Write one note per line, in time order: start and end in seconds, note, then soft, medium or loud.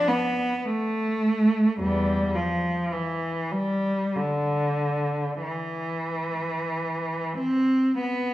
0.07 0.64 B3 medium
0.64 1.79 A3 medium
1.80 2.31 E2 soft
1.80 2.34 G3 medium
2.35 2.91 F3 soft
2.92 3.50 E3 soft
3.52 4.13 G3 medium
4.16 5.44 D3 soft
5.45 7.35 E3 soft
7.38 7.96 C4 medium
8.01 8.34 B3 soft